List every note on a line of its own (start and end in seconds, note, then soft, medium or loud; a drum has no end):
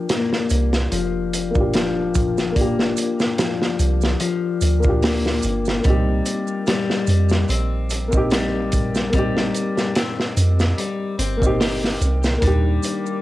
0.00 1.48 A#3 medium
0.00 1.49 D4 medium
0.00 1.51 F4 medium
0.00 1.52 G4 medium
0.09 0.88 A#3 medium
0.09 snare loud
0.09 closed hi-hat medium
0.09 maracas soft
0.33 snare soft
0.50 0.87 C2 medium
0.50 closed hi-hat medium
0.50 maracas medium
0.73 snare medium
0.73 maracas medium
0.92 2.94 F1 medium
0.92 1.70 F3 medium
0.92 closed hi-hat medium
0.92 maracas soft
1.33 closed hi-hat medium
1.33 maracas medium
1.51 2.49 A#3 medium
1.51 2.51 D4 medium
1.55 2.52 F4 medium
1.55 kick medium
1.55 maracas soft
1.60 2.54 G4 medium
1.74 2.52 F3 medium
1.74 snare loud
1.74 closed hi-hat medium
1.74 maracas soft
2.14 kick medium
2.14 closed hi-hat medium
2.14 maracas medium
2.38 snare soft
2.38 maracas medium
2.52 4.76 A#3 medium
2.52 4.78 D4 medium
2.56 3.34 A#3 medium
2.56 4.79 F4 medium
2.56 kick loud
2.56 closed hi-hat medium
2.56 maracas soft
2.61 4.81 G4 medium
2.79 snare soft
2.97 closed hi-hat medium
2.97 maracas medium
3.20 snare soft
3.20 maracas soft
3.38 4.17 F3 medium
3.38 snare loud
3.38 closed hi-hat medium
3.38 maracas soft
3.62 snare medium
3.79 4.16 C2 loud
3.79 closed hi-hat medium
3.79 maracas medium
4.01 snare soft
4.01 maracas medium
4.20 4.99 F3 medium
4.20 closed hi-hat medium
4.20 maracas soft
4.61 5.40 D2 medium
4.61 closed hi-hat medium
4.61 maracas medium
4.80 5.78 A#3 medium
4.80 5.80 D4 medium
4.80 maracas medium
4.85 5.81 F4 medium
4.85 kick medium
4.89 5.83 G4 medium
5.02 5.81 A#3 medium
5.02 snare loud
5.02 open hi-hat medium
5.02 maracas soft
5.26 snare medium
5.42 5.80 G1 medium
5.42 closed hi-hat medium
5.42 maracas medium
5.65 snare medium
5.65 maracas soft
5.80 8.05 A#3 medium
5.80 8.07 C4 medium
5.80 maracas soft
5.84 6.21 C2 loud
5.84 6.63 G3 medium
5.84 8.08 D#4 medium
5.84 kick loud
5.84 closed hi-hat medium
5.90 8.10 G4 medium
6.26 closed hi-hat medium
6.26 maracas medium
6.47 maracas soft
6.66 7.45 G3 medium
6.66 snare loud
6.66 closed hi-hat medium
6.66 maracas soft
6.90 snare soft
7.07 7.45 F2 loud
7.07 closed hi-hat medium
7.07 maracas medium
7.29 snare medium
7.29 maracas medium
7.48 9.51 A#1 medium
7.48 8.28 C4 medium
7.48 closed hi-hat medium
7.48 maracas soft
7.90 closed hi-hat medium
7.90 maracas medium
8.08 9.07 A#3 medium
8.08 9.08 C4 medium
8.12 9.10 D#4 medium
8.12 kick medium
8.12 maracas medium
8.17 9.11 G4 medium
8.30 9.10 G3 medium
8.30 snare loud
8.30 closed hi-hat medium
8.30 maracas soft
8.72 kick medium
8.72 closed hi-hat medium
8.72 maracas medium
8.95 snare soft
8.95 maracas soft
9.09 11.34 A#3 medium
9.09 11.35 C4 medium
9.09 closed hi-hat medium
9.13 9.92 G3 medium
9.13 11.37 D#4 medium
9.13 kick loud
9.13 maracas soft
9.19 11.39 G4 medium
9.37 snare medium
9.55 closed hi-hat medium
9.55 maracas medium
9.77 snare soft
9.77 maracas soft
9.95 10.74 C4 medium
9.95 snare loud
9.95 closed hi-hat medium
9.95 maracas soft
10.20 snare soft
10.37 10.73 F2 loud
10.37 closed hi-hat medium
10.37 maracas medium
10.60 snare medium
10.60 maracas medium
10.78 11.15 G3 medium
10.78 closed hi-hat medium
10.78 maracas soft
11.19 11.97 G1 medium
11.19 11.56 C4 loud
11.19 closed hi-hat medium
11.19 maracas medium
11.37 12.36 A#3 medium
11.37 12.37 C4 medium
11.42 12.39 D#4 medium
11.42 kick medium
11.42 maracas medium
11.46 12.40 G4 medium
11.60 11.99 G4 medium
11.60 snare medium
11.60 open hi-hat medium
11.60 maracas soft
11.84 snare medium
12.01 12.38 C2 medium
12.01 closed hi-hat medium
12.01 maracas medium
12.23 snare medium
12.23 maracas medium
12.38 13.22 A#3 medium
12.38 13.22 D4 medium
12.42 12.79 D#2 loud
12.42 13.22 D#3 medium
12.42 13.21 G3 medium
12.42 13.22 G4 medium
12.42 13.22 D6 medium
12.42 kick loud
12.42 closed hi-hat medium
12.42 maracas soft
12.47 13.22 G4 medium
12.83 closed hi-hat medium
12.83 maracas medium
13.06 maracas soft